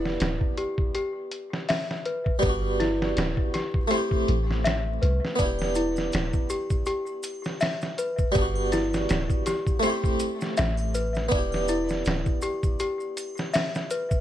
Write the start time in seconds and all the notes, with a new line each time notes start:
Already playing: E1 B3 D4 E4 G4
0.05 snare
0.20 D1, snare, closed hi-hat
0.41 kick
0.57 G4, closed hi-hat
0.78 kick
0.95 G4, closed hi-hat
1.31 closed hi-hat
1.53 snare
1.69 E5, snare, open hi-hat
1.91 snare
2.05 B4, closed hi-hat
2.26 kick
2.39 G3 B3, kick, closed hi-hat
2.43 G1 D4
2.49 F#4
2.80 E4, snare, closed hi-hat
3.02 snare
3.17 D1, snare, closed hi-hat
3.37 kick
3.54 G4, snare, closed hi-hat
3.74 kick
3.88 A3 C4 G4, closed hi-hat
3.94 E4 G4
4.11 kick
4.28 A1, closed hi-hat
4.51 snare
4.64 E5, snare, closed hi-hat
5.02 C2 B4, closed hi-hat
5.25 snare
5.36 B3 D4, kick, closed hi-hat, maracas
5.40 E1 E4
5.45 G4
5.59 snare, triangle
5.75 E4, closed hi-hat, maracas
5.96 snare, maracas
6.12 D1, snare, closed hi-hat, maracas
6.33 kick, maracas
6.50 G4, closed hi-hat, maracas
6.70 kick, maracas
6.86 G4, closed hi-hat, maracas
7.07 maracas
7.23 closed hi-hat, triangle, maracas
7.44 snare, maracas
7.60 E5, snare, open hi-hat, maracas
7.81 snare, maracas
7.98 B4, closed hi-hat, maracas
8.18 kick, maracas
8.32 G1 G3 B3, kick, closed hi-hat, maracas
8.38 D4 F#4
8.55 triangle
8.72 E4, snare, closed hi-hat, maracas
8.93 snare, maracas
9.09 D1, snare, closed hi-hat, maracas
9.30 kick, maracas
9.46 G4, snare, closed hi-hat, maracas
9.67 kick, maracas
9.80 A3 C4, closed hi-hat, maracas
9.84 E4 G4
9.89 G4
10.04 kick, maracas
10.20 closed hi-hat, maracas
10.41 snare, maracas
10.57 A1 E5, snare, closed hi-hat, maracas
10.77 triangle, maracas
10.95 B4, closed hi-hat, maracas
11.15 snare, maracas
11.29 E1 B3 D4, kick, closed hi-hat, maracas
11.35 E4 G4
11.52 snare, triangle
11.68 E4, closed hi-hat, maracas
11.89 snare, maracas
12.05 D1, snare, closed hi-hat, maracas
12.26 kick, maracas
12.42 G4, closed hi-hat, maracas
12.63 kick, maracas
12.79 G4, closed hi-hat, maracas
13.00 maracas
13.17 closed hi-hat, triangle, maracas
13.37 snare, maracas
13.53 E5, snare, open hi-hat, maracas
13.75 snare, maracas
13.91 B4, closed hi-hat, maracas
14.11 kick, maracas